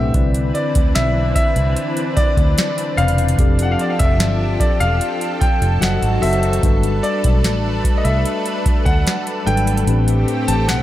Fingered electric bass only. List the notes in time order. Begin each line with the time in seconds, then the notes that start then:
Already playing: B1
0.14 C2
0.76 D2
0.95 B1
1.56 C2
2.17 muted fingered electric bass stroke
2.37 D2
2.98 E1
3.39 F1
4.00 F1
4.20 G1
4.81 E1
5.42 muted fingered electric bass stroke
5.62 F1
5.82 F#1
6.02 G#1
6.23 F#1
6.63 G1
7.25 B1
7.44 A1
8.05 C2
8.66 muted fingered electric bass stroke
8.86 D2
9.47 G#1
9.87 A1
10.48 A1
10.68 B1